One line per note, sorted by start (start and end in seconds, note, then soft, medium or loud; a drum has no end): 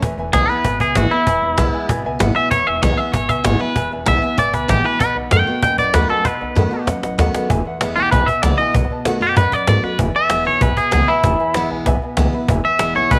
0.02 0.14 E1 medium
0.02 0.62 E2 loud
0.02 0.12 B4 loud
0.02 0.12 E5 loud
0.02 0.12 G#5 loud
0.02 cajon bass loud
0.17 0.29 E1 medium
0.17 0.27 B4 loud
0.17 0.28 E5 medium
0.17 0.28 G#5 loud
0.17 cajon slap soft
0.33 0.45 B1 medium
0.33 0.48 E3 medium
0.33 0.49 G#3 loud
0.33 0.49 B3 medium
0.33 0.48 E4 loud
0.33 0.49 G#4 loud
0.33 0.42 B4 medium
0.33 0.43 E5 medium
0.33 0.43 G#5 medium
0.33 cajon slap loud
0.48 0.65 B3 medium
0.48 0.64 E4 medium
0.48 0.58 B4 medium
0.48 0.79 B4 medium
0.48 0.58 E5 medium
0.48 0.59 G#5 medium
0.48 muted upright bass stroke medium
0.48 cajon slap soft
0.65 0.76 G#1 loud
0.65 1.24 B2 medium
0.65 0.74 B4 medium
0.65 0.74 E5 medium
0.65 0.75 G#5 medium
0.65 cajon bass loud
0.79 0.92 C#2 medium
0.79 0.97 G#4 medium
0.79 0.89 B4 medium
0.79 0.90 E5 medium
0.79 0.90 G#5 loud
0.79 cajon bass medium
0.95 1.07 G#1 medium
0.95 1.11 E3 loud
0.95 1.11 G#3 loud
0.95 1.12 B3 loud
0.95 1.10 E4 loud
0.95 1.12 F#4 medium
0.95 1.05 B4 loud
0.95 1.05 E5 loud
0.95 1.06 G#5 loud
0.95 cajon slap loud
1.10 1.27 B3 soft
1.10 1.26 E4 medium
1.10 2.02 E4 loud
1.10 1.20 B4 medium
1.10 1.21 F#5 medium
1.10 cajon slap soft
1.27 1.39 E1 loud
1.27 1.86 E2 medium
1.27 1.36 B4 medium
1.27 1.36 E5 medium
1.27 1.37 G#5 medium
1.27 cajon bass loud
1.42 1.54 E1 loud
1.42 1.52 B4 medium
1.42 1.52 E5 medium
1.42 1.53 B5 medium
1.42 cajon slap soft
1.57 1.70 B1 medium
1.57 1.87 E3 medium
1.57 1.88 G#3 loud
1.57 1.88 B3 loud
1.57 1.88 E4 medium
1.57 1.67 B4 loud
1.57 1.68 E5 medium
1.57 1.68 B5 loud
1.57 cajon slap loud
1.73 1.83 B4 medium
1.73 1.83 E5 medium
1.73 1.83 G#5 medium
1.73 muted upright bass stroke medium
1.73 cajon slap soft
1.89 2.01 G#1 loud
1.89 2.49 B2 medium
1.89 1.98 B4 medium
1.89 1.99 E5 medium
1.89 1.99 G#5 loud
1.89 cajon bass loud
2.04 2.16 C#2 medium
2.04 2.14 B4 loud
2.04 2.14 E5 medium
2.04 2.15 G#5 loud
2.04 cajon slap soft
2.19 2.32 G#1 medium
2.19 2.35 E3 medium
2.19 2.35 G#3 medium
2.19 2.36 B3 loud
2.19 2.34 E4 loud
2.19 2.30 B4 loud
2.19 2.30 E5 loud
2.19 2.30 F#5 loud
2.19 cajon slap loud
2.35 2.51 B3 soft
2.35 2.50 E4 medium
2.35 2.45 B4 medium
2.35 2.45 E5 medium
2.35 2.51 E5 loud
2.35 2.46 G#5 medium
2.35 muted upright bass stroke medium
2.35 cajon slap soft
2.51 2.63 E1 medium
2.51 3.11 E2 medium
2.51 2.61 B4 medium
2.51 2.67 C#5 loud
2.51 2.61 E5 medium
2.51 2.61 B5 medium
2.51 cajon bass loud
2.66 2.79 E1 medium
2.66 2.76 B4 medium
2.66 2.76 E5 medium
2.66 2.82 E5 medium
2.66 2.77 G#5 medium
2.66 cajon slap soft
2.81 2.94 B1 medium
2.81 2.98 E3 medium
2.81 2.98 G#3 medium
2.81 2.98 B3 medium
2.81 2.96 E4 medium
2.81 2.91 B4 medium
2.81 2.98 C#5 loud
2.81 2.92 G#5 medium
2.81 cajon slap loud
2.97 3.14 B3 soft
2.97 3.13 E4 medium
2.97 3.07 B4 medium
2.97 3.07 E5 medium
2.97 3.12 E5 loud
2.97 3.08 G#5 medium
2.97 muted upright bass stroke medium
3.12 3.26 G#1 medium
3.12 3.73 B2 medium
3.12 3.23 B4 medium
3.12 3.29 C#5 loud
3.12 3.23 E5 medium
3.12 3.24 G#5 medium
3.12 cajon bass loud
3.28 3.41 C#2 medium
3.28 3.38 B4 medium
3.28 3.45 E5 loud
3.28 3.39 E5 medium
3.28 3.39 G#5 medium
3.28 cajon bass medium
3.44 3.57 G#1 medium
3.44 3.59 E3 medium
3.44 3.60 G#3 medium
3.44 3.60 B3 loud
3.44 3.58 E4 medium
3.44 3.54 B4 loud
3.44 3.61 C#5 loud
3.44 3.54 E5 medium
3.44 3.55 G#5 loud
3.44 cajon slap loud
3.59 3.76 B3 medium
3.59 3.75 E4 medium
3.59 3.69 B4 medium
3.59 3.91 B4 loud
3.59 3.70 E5 medium
3.59 3.70 G#5 medium
3.59 muted upright bass stroke medium
3.59 cajon slap soft
3.75 3.88 E1 medium
3.75 4.35 E2 medium
3.75 3.85 B4 medium
3.75 3.85 E5 medium
3.75 3.86 G#5 loud
3.75 cajon bass loud
3.91 4.04 E1 medium
3.91 4.01 B4 medium
3.91 4.01 E5 medium
3.91 4.02 G#5 medium
3.91 cajon slap soft
4.06 4.19 B1 medium
4.06 4.21 E3 medium
4.06 4.22 G#3 medium
4.06 4.22 B3 loud
4.06 4.21 E4 medium
4.06 4.16 B4 medium
4.06 4.17 E5 medium
4.06 4.38 E5 loud
4.06 4.17 G#5 medium
4.06 cajon slap loud
4.21 4.38 B3 medium
4.21 4.37 E4 medium
4.21 4.32 B4 medium
4.21 4.32 E5 medium
4.21 4.32 G#5 medium
4.21 muted upright bass stroke medium
4.21 cajon slap soft
4.37 4.50 G#1 medium
4.37 4.97 B2 loud
4.37 4.47 B4 medium
4.37 4.54 D5 loud
4.37 4.48 E5 medium
4.37 4.48 G#5 medium
4.37 cajon bass loud
4.53 4.66 C#2 medium
4.53 4.63 B4 medium
4.53 4.69 B4 medium
4.53 4.63 E5 medium
4.53 4.63 G#5 loud
4.53 cajon bass medium
4.68 4.81 A#1 medium
4.68 4.84 E3 loud
4.68 4.84 G#3 medium
4.68 4.85 B3 medium
4.68 4.83 E4 loud
4.68 4.85 G4 loud
4.68 4.78 B4 loud
4.68 4.79 E5 loud
4.68 4.79 G#5 loud
4.68 cajon slap loud
4.84 5.01 B3 soft
4.84 5.00 E4 medium
4.84 4.94 B4 medium
4.84 5.00 B4 loud
4.84 4.94 E5 medium
4.84 4.94 G#5 medium
4.84 muted upright bass stroke medium
4.99 5.12 B1 medium
4.99 5.60 B2 medium
4.99 5.09 B4 medium
4.99 5.16 B4 loud
4.99 5.10 D#5 medium
4.99 5.10 F#5 loud
4.99 cajon bass loud
5.15 5.28 B1 loud
5.15 5.25 B4 medium
5.15 5.25 D#5 medium
5.15 5.26 F#5 medium
5.15 cajon slap soft
5.31 5.44 F#2 medium
5.31 5.47 D#3 medium
5.31 5.47 A3 loud
5.31 5.47 B3 loud
5.31 5.46 F#4 medium
5.31 5.41 B4 medium
5.31 5.41 D#5 medium
5.31 5.41 F#5 medium
5.31 5.62 G5 loud
5.31 cajon slap loud
5.47 5.63 B3 soft
5.47 5.62 F#4 medium
5.47 5.57 B4 medium
5.47 5.57 D#5 medium
5.47 5.57 F#5 medium
5.47 muted upright bass stroke medium
5.62 5.74 D#2 loud
5.62 6.22 F#2 medium
5.62 5.72 B4 medium
5.62 5.73 D#5 medium
5.62 5.78 G5 loud
5.62 5.73 G#5 medium
5.62 cajon bass loud
5.78 5.90 A1 medium
5.78 5.88 B4 medium
5.78 5.94 D5 loud
5.78 5.88 D#5 medium
5.78 5.88 F#5 medium
5.78 cajon bass medium
5.93 6.06 D#2 medium
5.93 6.09 D#3 loud
5.93 6.09 A3 medium
5.93 6.10 B3 loud
5.93 6.08 F#4 loud
5.93 6.03 B4 loud
5.93 6.09 B4 medium
5.93 6.04 D#5 loud
5.93 6.04 F#5 loud
5.93 cajon slap loud
6.09 6.25 B3 soft
6.09 6.24 F#4 medium
6.09 6.25 A4 loud
6.09 6.19 B4 medium
6.09 6.19 D#5 medium
6.09 6.19 G#5 medium
6.09 cajon slap soft
6.24 6.37 B1 loud
6.24 6.84 B2 medium
6.24 6.34 B4 medium
6.24 6.86 B4 loud
6.24 6.35 D#5 medium
6.24 6.35 F#5 medium
6.24 cajon bass loud
6.24 cajon slap medium
6.40 6.53 B1 medium
6.40 6.50 B4 medium
6.40 6.50 D#5 medium
6.40 6.51 F#5 medium
6.40 cajon slap soft
6.55 6.68 F#2 loud
6.55 6.71 D#3 medium
6.55 6.71 A3 medium
6.55 6.72 B3 medium
6.55 6.69 F#4 medium
6.55 6.65 B4 medium
6.55 6.66 D#5 medium
6.55 6.66 F#5 medium
6.55 cajon slap medium
6.71 6.87 B3 medium
6.71 6.86 F#4 medium
6.71 6.81 B4 medium
6.71 6.81 D#5 medium
6.71 6.82 A5 medium
6.71 muted upright bass stroke medium
6.71 cajon slap soft
6.86 6.99 D#2 medium
6.86 7.47 F#2 loud
6.86 6.96 B4 medium
6.86 6.97 D#5 medium
6.86 6.97 F#5 loud
6.86 cajon bass loud
6.86 cajon slap medium
7.02 7.15 A1 loud
7.02 7.12 B4 medium
7.02 7.12 D#5 medium
7.02 7.13 F#5 loud
7.02 cajon slap medium
7.18 7.30 D#2 medium
7.18 7.48 D#3 medium
7.18 7.49 A3 loud
7.18 7.49 B3 loud
7.18 7.49 F#4 loud
7.18 7.32 B4 loud
7.18 7.28 D#5 loud
7.18 7.28 F#5 loud
7.18 cajon slap loud
7.34 7.43 B4 loud
7.34 7.44 D#5 medium
7.34 7.44 F#5 loud
7.34 cajon slap loud
7.49 7.64 E1 medium
7.49 8.09 E2 medium
7.49 7.59 B4 loud
7.49 7.59 E5 medium
7.49 7.59 G#5 loud
7.49 cajon bass loud
7.65 7.75 B4 medium
7.65 7.75 E5 medium
7.65 7.76 F#5 medium
7.65 cajon slap soft
7.81 7.95 E1 medium
7.81 7.96 E3 medium
7.81 7.96 G#3 medium
7.81 7.97 B3 medium
7.81 7.95 E4 medium
7.81 7.90 B4 loud
7.81 7.91 E5 medium
7.81 7.91 F#5 loud
7.81 cajon slap loud
7.96 8.11 B1 medium
7.96 8.13 B3 medium
7.96 8.12 E4 medium
7.96 8.11 G4 loud
7.96 8.06 B4 medium
7.96 8.06 E5 medium
7.96 8.07 G#5 medium
7.96 cajon slap soft
8.11 8.26 B1 loud
8.11 8.71 B2 medium
8.11 8.27 B4 loud
8.11 8.21 B4 medium
8.11 8.22 E5 medium
8.11 8.22 G#5 loud
8.11 cajon bass loud
8.26 8.37 B4 medium
8.26 8.42 E5 medium
8.26 8.37 E5 medium
8.26 8.38 G#5 medium
8.26 muted upright bass stroke medium
8.26 cajon bass medium
8.42 8.57 C#2 medium
8.42 8.58 E3 loud
8.42 8.58 G#3 medium
8.42 8.59 B3 medium
8.42 8.58 E4 medium
8.42 8.53 B4 medium
8.42 8.57 D5 medium
8.42 8.53 E5 medium
8.42 8.54 B5 medium
8.42 cajon slap loud
8.58 8.75 B3 soft
8.58 8.74 E4 medium
8.58 8.68 B4 medium
8.58 8.74 D#5 loud
8.58 8.69 E5 medium
8.58 8.69 G#5 medium
8.58 cajon slap soft
8.74 8.89 B1 medium
8.74 9.34 B2 medium
8.74 8.84 B4 medium
8.74 8.85 D#5 medium
8.74 8.85 F#5 medium
8.74 cajon bass loud
8.90 9.00 B4 medium
8.90 9.00 D#5 medium
8.90 9.01 A5 loud
8.90 muted upright bass stroke medium
8.90 cajon slap soft
9.05 9.19 B1 medium
9.05 9.21 D#3 medium
9.05 9.21 A3 medium
9.05 9.21 B3 medium
9.05 9.19 F#4 loud
9.05 9.15 B4 medium
9.05 9.16 D#5 medium
9.05 9.16 F#5 loud
9.05 cajon slap loud
9.21 9.35 F#2 medium
9.21 9.37 B3 medium
9.21 9.36 F#4 medium
9.21 9.37 G4 medium
9.21 9.31 D#5 medium
9.21 9.31 F#5 medium
9.21 cajon slap soft
9.36 9.96 F#2 medium
9.36 9.51 F#2 medium
9.36 9.46 B4 medium
9.36 9.53 B4 loud
9.36 9.46 D#5 medium
9.36 9.47 F#5 loud
9.36 cajon bass loud
9.51 9.61 B4 medium
9.51 9.67 D5 medium
9.51 9.62 D#5 medium
9.51 9.62 F#5 medium
9.51 muted upright bass stroke medium
9.51 cajon bass medium
9.67 9.82 G#2 medium
9.67 9.83 D#3 medium
9.67 9.83 A3 medium
9.67 9.84 B3 loud
9.67 9.82 F#4 loud
9.67 9.77 B4 medium
9.67 9.84 D5 medium
9.67 9.78 D#5 medium
9.67 9.78 F#5 medium
9.67 cajon slap loud
9.83 10.00 B3 soft
9.83 9.99 F#4 medium
9.83 9.93 B4 medium
9.83 9.99 B4 loud
9.83 9.93 D#5 medium
9.83 9.93 F#5 medium
9.83 muted upright bass stroke medium
9.83 cajon slap soft
9.98 10.13 E1 medium
9.98 10.59 E2 medium
9.98 10.08 B4 medium
9.98 10.08 E5 medium
9.98 10.09 G#5 loud
9.98 cajon bass loud
10.14 10.24 B4 medium
10.14 10.24 E5 medium
10.14 10.46 E5 loud
10.14 10.25 G#5 medium
10.14 muted upright bass stroke medium
10.14 cajon slap soft
10.30 10.45 E1 loud
10.30 10.45 E3 loud
10.30 10.45 G#3 medium
10.30 10.46 B3 loud
10.30 10.44 E4 medium
10.30 10.40 B4 medium
10.30 10.40 E5 medium
10.30 10.40 G#5 medium
10.30 cajon slap loud
10.45 10.60 B1 medium
10.45 10.62 B3 soft
10.45 10.61 E4 medium
10.45 10.55 B4 medium
10.45 10.62 C#5 loud
10.45 10.55 E5 medium
10.45 10.56 G#5 medium
10.45 cajon slap soft
10.61 10.75 B1 medium
10.61 11.21 B2 medium
10.61 10.71 B4 loud
10.61 10.77 B4 loud
10.61 10.71 E5 medium
10.61 10.71 G#5 loud
10.61 cajon bass loud
10.77 10.92 G#4 medium
10.77 10.86 B4 medium
10.77 10.87 E5 medium
10.77 10.87 G#5 medium
10.77 muted upright bass stroke medium
10.77 cajon bass medium
10.91 11.07 C#2 medium
10.91 11.07 E3 medium
10.91 11.08 G#3 loud
10.91 11.08 B3 medium
10.91 11.07 E4 medium
10.91 11.08 G#4 medium
10.91 11.02 B4 medium
10.91 11.02 E5 medium
10.91 11.02 F#5 medium
10.91 cajon slap loud
11.08 11.24 B3 medium
11.08 11.23 E4 medium
11.08 11.69 E4 loud
11.08 11.18 B4 medium
11.08 11.18 E5 medium
11.08 11.18 G#5 medium
11.08 cajon slap soft
11.23 11.38 E1 medium
11.23 11.83 E2 medium
11.23 11.33 B4 medium
11.23 11.33 E5 medium
11.23 11.34 G#5 loud
11.23 cajon bass loud
11.39 11.49 B4 medium
11.39 11.49 E5 medium
11.39 11.49 G#5 medium
11.39 cajon slap soft
11.54 11.69 E1 medium
11.54 11.85 E3 medium
11.54 11.85 G#3 medium
11.54 11.86 B3 loud
11.54 11.86 E4 loud
11.54 11.64 B4 medium
11.54 11.65 E5 medium
11.54 11.65 F#5 loud
11.54 cajon slap loud
11.70 11.85 B1 medium
11.70 11.80 B4 medium
11.70 11.80 E5 medium
11.70 11.81 G#5 medium
11.70 cajon slap soft
11.86 12.00 B1 loud
11.86 12.46 B2 medium
11.86 11.96 B4 loud
11.86 11.96 E5 loud
11.86 11.97 G#5 loud
11.86 cajon bass loud
12.02 12.11 B4 medium
12.02 12.12 G#5 medium
12.02 muted upright bass stroke medium
12.02 cajon slap soft
12.17 12.31 C#2 loud
12.17 12.32 E3 medium
12.17 12.33 G#3 loud
12.17 12.33 B3 loud
12.17 12.32 E4 loud
12.17 12.27 B4 medium
12.17 12.27 E5 medium
12.17 12.28 G#5 loud
12.17 cajon slap loud
12.33 12.49 B3 soft
12.33 12.48 E4 medium
12.33 12.43 B4 loud
12.33 12.43 E5 medium
12.33 12.43 B5 loud
12.33 cajon slap soft
12.48 12.63 E1 loud
12.48 13.08 E2 medium
12.48 12.58 B4 loud
12.48 12.59 E5 loud
12.48 12.59 G#5 loud
12.48 cajon bass loud
12.63 12.73 B4 medium
12.63 12.74 E5 medium
12.63 12.95 E5 loud
12.63 12.74 G#5 medium
12.63 muted upright bass stroke medium
12.63 cajon slap soft
12.79 12.94 E1 medium
12.79 12.95 E3 medium
12.79 12.95 G#3 loud
12.79 12.95 B3 medium
12.79 12.94 E4 medium
12.79 12.89 B4 medium
12.79 12.89 E5 medium
12.79 12.90 G#5 medium
12.79 cajon slap loud
12.94 13.09 B1 medium
12.94 13.12 B3 medium
12.94 13.11 E4 medium
12.94 13.04 B4 medium
12.94 13.11 C#5 medium
12.94 13.05 E5 medium
12.94 13.05 G#5 medium
12.94 cajon slap soft
13.10 13.19 B1 loud
13.10 13.19 B2 medium
13.10 13.19 B4 medium
13.10 13.19 B4 loud
13.10 13.19 E5 medium
13.10 13.19 G#5 loud
13.10 cajon bass loud